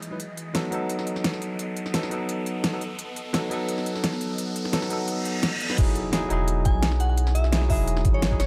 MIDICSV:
0, 0, Header, 1, 9, 480
1, 0, Start_track
1, 0, Key_signature, 4, "major"
1, 0, Tempo, 348837
1, 275, Time_signature, 4, 2, 24, 8
1, 11649, End_track
2, 0, Start_track
2, 0, Title_t, "Synth bell"
2, 0, Program_c, 0, 98
2, 9158, Note_on_c, 0, 80, 94
2, 9447, Note_off_c, 0, 80, 0
2, 9636, Note_on_c, 0, 78, 93
2, 9716, Note_off_c, 0, 78, 0
2, 9761, Note_on_c, 0, 78, 71
2, 9834, Note_off_c, 0, 78, 0
2, 10111, Note_on_c, 0, 76, 97
2, 10403, Note_off_c, 0, 76, 0
2, 10595, Note_on_c, 0, 76, 96
2, 10885, Note_off_c, 0, 76, 0
2, 11203, Note_on_c, 0, 73, 95
2, 11488, Note_off_c, 0, 73, 0
2, 11555, Note_on_c, 0, 73, 94
2, 11649, Note_off_c, 0, 73, 0
2, 11649, End_track
3, 0, Start_track
3, 0, Title_t, "Ambient pad"
3, 0, Program_c, 1, 92
3, 0, Note_on_c, 1, 52, 80
3, 0, Note_on_c, 1, 56, 75
3, 0, Note_on_c, 1, 75, 86
3, 219, Note_off_c, 1, 56, 0
3, 220, Note_off_c, 1, 52, 0
3, 275, Note_on_c, 1, 69, 78
3, 279, Note_on_c, 1, 59, 83
3, 7900, Note_off_c, 1, 69, 0
3, 7900, Note_off_c, 1, 75, 0
3, 7902, Note_off_c, 1, 59, 0
3, 7954, Note_on_c, 1, 80, 96
3, 7956, Note_on_c, 1, 75, 73
3, 7957, Note_on_c, 1, 66, 86
3, 11649, Note_off_c, 1, 66, 0
3, 11649, Note_off_c, 1, 75, 0
3, 11649, Note_off_c, 1, 80, 0
3, 11649, End_track
4, 0, Start_track
4, 0, Title_t, "Tine electric piano"
4, 0, Program_c, 2, 4
4, 146, Note_on_c, 2, 54, 68
4, 154, Note_on_c, 2, 63, 63
4, 163, Note_on_c, 2, 64, 63
4, 172, Note_on_c, 2, 71, 81
4, 229, Note_off_c, 2, 54, 0
4, 233, Note_off_c, 2, 63, 0
4, 237, Note_off_c, 2, 64, 0
4, 242, Note_off_c, 2, 71, 0
4, 742, Note_on_c, 2, 54, 98
4, 751, Note_on_c, 2, 59, 85
4, 760, Note_on_c, 2, 63, 88
4, 769, Note_on_c, 2, 69, 101
4, 954, Note_off_c, 2, 54, 0
4, 966, Note_off_c, 2, 59, 0
4, 970, Note_off_c, 2, 63, 0
4, 970, Note_on_c, 2, 54, 98
4, 974, Note_off_c, 2, 69, 0
4, 987, Note_on_c, 2, 59, 84
4, 1004, Note_on_c, 2, 63, 89
4, 1022, Note_on_c, 2, 69, 102
4, 2635, Note_off_c, 2, 54, 0
4, 2644, Note_off_c, 2, 59, 0
4, 2652, Note_off_c, 2, 63, 0
4, 2660, Note_on_c, 2, 54, 81
4, 2661, Note_off_c, 2, 69, 0
4, 2668, Note_on_c, 2, 59, 76
4, 2677, Note_on_c, 2, 63, 76
4, 2685, Note_on_c, 2, 69, 91
4, 2869, Note_off_c, 2, 54, 0
4, 2884, Note_off_c, 2, 59, 0
4, 2886, Note_on_c, 2, 54, 85
4, 2889, Note_off_c, 2, 63, 0
4, 2893, Note_off_c, 2, 69, 0
4, 2903, Note_on_c, 2, 59, 84
4, 2921, Note_on_c, 2, 63, 83
4, 2939, Note_on_c, 2, 69, 95
4, 3716, Note_off_c, 2, 54, 0
4, 3725, Note_off_c, 2, 59, 0
4, 3733, Note_off_c, 2, 63, 0
4, 3743, Note_off_c, 2, 69, 0
4, 3746, Note_on_c, 2, 54, 78
4, 3754, Note_on_c, 2, 59, 68
4, 3763, Note_on_c, 2, 63, 72
4, 3771, Note_on_c, 2, 69, 87
4, 3875, Note_off_c, 2, 54, 0
4, 3879, Note_off_c, 2, 59, 0
4, 3883, Note_off_c, 2, 63, 0
4, 3887, Note_off_c, 2, 69, 0
4, 4582, Note_on_c, 2, 54, 97
4, 4593, Note_on_c, 2, 59, 92
4, 4600, Note_on_c, 2, 63, 92
4, 4609, Note_on_c, 2, 69, 110
4, 4793, Note_off_c, 2, 54, 0
4, 4806, Note_off_c, 2, 59, 0
4, 4809, Note_on_c, 2, 54, 101
4, 4810, Note_off_c, 2, 63, 0
4, 4815, Note_off_c, 2, 69, 0
4, 4827, Note_on_c, 2, 59, 87
4, 4844, Note_on_c, 2, 63, 86
4, 4861, Note_on_c, 2, 69, 111
4, 6475, Note_off_c, 2, 54, 0
4, 6483, Note_off_c, 2, 59, 0
4, 6492, Note_off_c, 2, 63, 0
4, 6497, Note_on_c, 2, 54, 85
4, 6501, Note_off_c, 2, 69, 0
4, 6507, Note_on_c, 2, 59, 80
4, 6514, Note_on_c, 2, 63, 80
4, 6523, Note_on_c, 2, 69, 99
4, 6709, Note_off_c, 2, 54, 0
4, 6723, Note_off_c, 2, 59, 0
4, 6726, Note_on_c, 2, 54, 85
4, 6727, Note_off_c, 2, 63, 0
4, 6732, Note_off_c, 2, 69, 0
4, 6744, Note_on_c, 2, 59, 82
4, 6760, Note_on_c, 2, 63, 84
4, 6781, Note_on_c, 2, 69, 102
4, 7556, Note_off_c, 2, 54, 0
4, 7565, Note_off_c, 2, 59, 0
4, 7573, Note_off_c, 2, 63, 0
4, 7584, Note_off_c, 2, 69, 0
4, 7830, Note_on_c, 2, 54, 73
4, 7837, Note_on_c, 2, 59, 66
4, 7846, Note_on_c, 2, 63, 67
4, 7855, Note_on_c, 2, 71, 85
4, 7911, Note_off_c, 2, 54, 0
4, 7914, Note_off_c, 2, 59, 0
4, 7919, Note_off_c, 2, 63, 0
4, 7923, Note_off_c, 2, 71, 0
4, 7940, Note_on_c, 2, 54, 97
4, 7948, Note_on_c, 2, 63, 94
4, 7957, Note_on_c, 2, 64, 91
4, 7966, Note_on_c, 2, 68, 107
4, 8381, Note_off_c, 2, 54, 0
4, 8386, Note_off_c, 2, 63, 0
4, 8390, Note_off_c, 2, 64, 0
4, 8395, Note_off_c, 2, 68, 0
4, 8419, Note_on_c, 2, 54, 96
4, 8429, Note_on_c, 2, 63, 91
4, 8436, Note_on_c, 2, 64, 86
4, 8447, Note_on_c, 2, 68, 104
4, 8634, Note_off_c, 2, 54, 0
4, 8644, Note_off_c, 2, 63, 0
4, 8648, Note_off_c, 2, 64, 0
4, 8650, Note_on_c, 2, 54, 92
4, 8653, Note_off_c, 2, 68, 0
4, 8668, Note_on_c, 2, 63, 83
4, 8685, Note_on_c, 2, 64, 87
4, 8704, Note_on_c, 2, 68, 106
4, 10315, Note_off_c, 2, 54, 0
4, 10324, Note_off_c, 2, 63, 0
4, 10332, Note_off_c, 2, 64, 0
4, 10342, Note_off_c, 2, 68, 0
4, 10343, Note_on_c, 2, 54, 83
4, 10353, Note_on_c, 2, 63, 80
4, 10361, Note_on_c, 2, 64, 74
4, 10372, Note_on_c, 2, 68, 92
4, 10553, Note_off_c, 2, 54, 0
4, 10566, Note_off_c, 2, 63, 0
4, 10569, Note_on_c, 2, 54, 91
4, 10571, Note_off_c, 2, 64, 0
4, 10576, Note_off_c, 2, 68, 0
4, 10589, Note_on_c, 2, 63, 85
4, 10607, Note_on_c, 2, 64, 84
4, 10625, Note_on_c, 2, 68, 103
4, 11398, Note_off_c, 2, 54, 0
4, 11408, Note_off_c, 2, 63, 0
4, 11416, Note_off_c, 2, 64, 0
4, 11426, Note_off_c, 2, 68, 0
4, 11428, Note_on_c, 2, 54, 81
4, 11437, Note_on_c, 2, 63, 71
4, 11448, Note_on_c, 2, 64, 74
4, 11454, Note_on_c, 2, 68, 89
4, 11556, Note_off_c, 2, 54, 0
4, 11561, Note_off_c, 2, 63, 0
4, 11566, Note_off_c, 2, 64, 0
4, 11569, Note_off_c, 2, 68, 0
4, 11649, End_track
5, 0, Start_track
5, 0, Title_t, "Sub bass"
5, 0, Program_c, 3, 38
5, 7957, Note_on_c, 3, 28, 95
5, 8069, Note_off_c, 3, 28, 0
5, 8674, Note_on_c, 3, 28, 101
5, 9260, Note_off_c, 3, 28, 0
5, 9280, Note_on_c, 3, 35, 95
5, 9383, Note_off_c, 3, 35, 0
5, 9394, Note_on_c, 3, 35, 79
5, 10596, Note_on_c, 3, 28, 106
5, 10617, Note_off_c, 3, 35, 0
5, 11077, Note_on_c, 3, 32, 103
5, 11098, Note_off_c, 3, 28, 0
5, 11538, Note_off_c, 3, 32, 0
5, 11553, Note_on_c, 3, 32, 85
5, 11649, Note_off_c, 3, 32, 0
5, 11649, End_track
6, 0, Start_track
6, 0, Title_t, "Impact"
6, 0, Program_c, 4, 103
6, 7954, Note_on_c, 4, 60, 75
6, 9874, Note_off_c, 4, 60, 0
6, 11649, End_track
7, 0, Start_track
7, 0, Title_t, "Reverse cymbal"
7, 0, Program_c, 5, 119
7, 6992, Note_on_c, 5, 60, 81
7, 7953, Note_off_c, 5, 60, 0
7, 11649, End_track
8, 0, Start_track
8, 0, Title_t, "Riser"
8, 0, Program_c, 6, 103
8, 0, Note_on_c, 6, 60, 75
8, 7954, Note_off_c, 6, 60, 0
8, 11649, End_track
9, 0, Start_track
9, 0, Title_t, "Drums"
9, 33, Note_on_c, 9, 42, 60
9, 171, Note_off_c, 9, 42, 0
9, 272, Note_on_c, 9, 42, 85
9, 409, Note_off_c, 9, 42, 0
9, 515, Note_on_c, 9, 42, 67
9, 652, Note_off_c, 9, 42, 0
9, 753, Note_on_c, 9, 38, 119
9, 753, Note_on_c, 9, 42, 94
9, 890, Note_off_c, 9, 38, 0
9, 890, Note_off_c, 9, 42, 0
9, 992, Note_on_c, 9, 42, 61
9, 1129, Note_off_c, 9, 42, 0
9, 1231, Note_on_c, 9, 42, 88
9, 1359, Note_on_c, 9, 40, 33
9, 1369, Note_off_c, 9, 42, 0
9, 1470, Note_on_c, 9, 42, 62
9, 1496, Note_off_c, 9, 40, 0
9, 1597, Note_on_c, 9, 40, 31
9, 1607, Note_off_c, 9, 42, 0
9, 1711, Note_on_c, 9, 38, 121
9, 1711, Note_on_c, 9, 42, 86
9, 1735, Note_off_c, 9, 40, 0
9, 1838, Note_on_c, 9, 40, 33
9, 1848, Note_off_c, 9, 38, 0
9, 1848, Note_off_c, 9, 42, 0
9, 1950, Note_on_c, 9, 42, 61
9, 1975, Note_off_c, 9, 40, 0
9, 2088, Note_off_c, 9, 42, 0
9, 2190, Note_on_c, 9, 42, 86
9, 2327, Note_off_c, 9, 42, 0
9, 2429, Note_on_c, 9, 42, 67
9, 2556, Note_on_c, 9, 40, 30
9, 2567, Note_off_c, 9, 42, 0
9, 2668, Note_on_c, 9, 38, 116
9, 2668, Note_on_c, 9, 42, 94
9, 2694, Note_off_c, 9, 40, 0
9, 2795, Note_on_c, 9, 40, 44
9, 2806, Note_off_c, 9, 38, 0
9, 2806, Note_off_c, 9, 42, 0
9, 2907, Note_on_c, 9, 42, 66
9, 2933, Note_off_c, 9, 40, 0
9, 3045, Note_off_c, 9, 42, 0
9, 3149, Note_on_c, 9, 42, 85
9, 3286, Note_off_c, 9, 42, 0
9, 3390, Note_on_c, 9, 42, 65
9, 3527, Note_off_c, 9, 42, 0
9, 3630, Note_on_c, 9, 38, 110
9, 3630, Note_on_c, 9, 42, 89
9, 3768, Note_off_c, 9, 38, 0
9, 3768, Note_off_c, 9, 42, 0
9, 3872, Note_on_c, 9, 42, 62
9, 4009, Note_off_c, 9, 42, 0
9, 4110, Note_on_c, 9, 42, 94
9, 4247, Note_off_c, 9, 42, 0
9, 4353, Note_on_c, 9, 42, 67
9, 4491, Note_off_c, 9, 42, 0
9, 4594, Note_on_c, 9, 38, 116
9, 4594, Note_on_c, 9, 42, 96
9, 4732, Note_off_c, 9, 38, 0
9, 4732, Note_off_c, 9, 42, 0
9, 4831, Note_on_c, 9, 42, 70
9, 4969, Note_off_c, 9, 42, 0
9, 5071, Note_on_c, 9, 42, 93
9, 5200, Note_on_c, 9, 40, 33
9, 5209, Note_off_c, 9, 42, 0
9, 5315, Note_on_c, 9, 42, 69
9, 5338, Note_off_c, 9, 40, 0
9, 5442, Note_on_c, 9, 40, 34
9, 5452, Note_off_c, 9, 42, 0
9, 5554, Note_on_c, 9, 38, 106
9, 5554, Note_on_c, 9, 42, 92
9, 5579, Note_off_c, 9, 40, 0
9, 5678, Note_on_c, 9, 40, 35
9, 5692, Note_off_c, 9, 38, 0
9, 5692, Note_off_c, 9, 42, 0
9, 5792, Note_on_c, 9, 42, 67
9, 5815, Note_off_c, 9, 40, 0
9, 5930, Note_off_c, 9, 42, 0
9, 6032, Note_on_c, 9, 42, 94
9, 6169, Note_off_c, 9, 42, 0
9, 6272, Note_on_c, 9, 42, 69
9, 6399, Note_on_c, 9, 40, 32
9, 6409, Note_off_c, 9, 42, 0
9, 6510, Note_on_c, 9, 38, 115
9, 6510, Note_on_c, 9, 42, 98
9, 6536, Note_off_c, 9, 40, 0
9, 6636, Note_on_c, 9, 40, 50
9, 6647, Note_off_c, 9, 38, 0
9, 6647, Note_off_c, 9, 42, 0
9, 6747, Note_on_c, 9, 42, 68
9, 6774, Note_off_c, 9, 40, 0
9, 6885, Note_off_c, 9, 42, 0
9, 6987, Note_on_c, 9, 42, 93
9, 7124, Note_off_c, 9, 42, 0
9, 7229, Note_on_c, 9, 42, 72
9, 7367, Note_off_c, 9, 42, 0
9, 7471, Note_on_c, 9, 38, 121
9, 7471, Note_on_c, 9, 42, 97
9, 7608, Note_off_c, 9, 38, 0
9, 7608, Note_off_c, 9, 42, 0
9, 7712, Note_on_c, 9, 42, 67
9, 7839, Note_on_c, 9, 40, 59
9, 7850, Note_off_c, 9, 42, 0
9, 7953, Note_on_c, 9, 42, 100
9, 7953, Note_on_c, 9, 49, 104
9, 7955, Note_on_c, 9, 36, 122
9, 7977, Note_off_c, 9, 40, 0
9, 8091, Note_off_c, 9, 42, 0
9, 8091, Note_off_c, 9, 49, 0
9, 8093, Note_off_c, 9, 36, 0
9, 8193, Note_on_c, 9, 42, 70
9, 8331, Note_off_c, 9, 42, 0
9, 8432, Note_on_c, 9, 38, 117
9, 8432, Note_on_c, 9, 42, 99
9, 8569, Note_off_c, 9, 38, 0
9, 8569, Note_off_c, 9, 42, 0
9, 8673, Note_on_c, 9, 42, 69
9, 8810, Note_off_c, 9, 42, 0
9, 8912, Note_on_c, 9, 42, 95
9, 9050, Note_off_c, 9, 42, 0
9, 9152, Note_on_c, 9, 42, 73
9, 9156, Note_on_c, 9, 36, 102
9, 9290, Note_off_c, 9, 42, 0
9, 9294, Note_off_c, 9, 36, 0
9, 9391, Note_on_c, 9, 38, 122
9, 9391, Note_on_c, 9, 42, 99
9, 9516, Note_on_c, 9, 40, 34
9, 9529, Note_off_c, 9, 38, 0
9, 9529, Note_off_c, 9, 42, 0
9, 9631, Note_on_c, 9, 42, 66
9, 9654, Note_off_c, 9, 40, 0
9, 9769, Note_off_c, 9, 42, 0
9, 9872, Note_on_c, 9, 42, 89
9, 10001, Note_on_c, 9, 40, 36
9, 10010, Note_off_c, 9, 42, 0
9, 10115, Note_on_c, 9, 42, 70
9, 10138, Note_off_c, 9, 40, 0
9, 10240, Note_on_c, 9, 40, 32
9, 10252, Note_off_c, 9, 42, 0
9, 10355, Note_on_c, 9, 38, 127
9, 10355, Note_on_c, 9, 42, 97
9, 10378, Note_off_c, 9, 40, 0
9, 10478, Note_off_c, 9, 38, 0
9, 10478, Note_on_c, 9, 38, 37
9, 10492, Note_off_c, 9, 42, 0
9, 10592, Note_on_c, 9, 46, 76
9, 10596, Note_on_c, 9, 36, 62
9, 10616, Note_off_c, 9, 38, 0
9, 10729, Note_off_c, 9, 46, 0
9, 10734, Note_off_c, 9, 36, 0
9, 10836, Note_on_c, 9, 42, 89
9, 10961, Note_on_c, 9, 40, 36
9, 10974, Note_off_c, 9, 42, 0
9, 11073, Note_on_c, 9, 42, 68
9, 11076, Note_on_c, 9, 36, 105
9, 11099, Note_off_c, 9, 40, 0
9, 11211, Note_off_c, 9, 42, 0
9, 11214, Note_off_c, 9, 36, 0
9, 11315, Note_on_c, 9, 38, 123
9, 11315, Note_on_c, 9, 42, 92
9, 11441, Note_on_c, 9, 36, 65
9, 11453, Note_off_c, 9, 38, 0
9, 11453, Note_off_c, 9, 42, 0
9, 11555, Note_on_c, 9, 40, 51
9, 11555, Note_on_c, 9, 42, 67
9, 11579, Note_off_c, 9, 36, 0
9, 11649, Note_off_c, 9, 40, 0
9, 11649, Note_off_c, 9, 42, 0
9, 11649, End_track
0, 0, End_of_file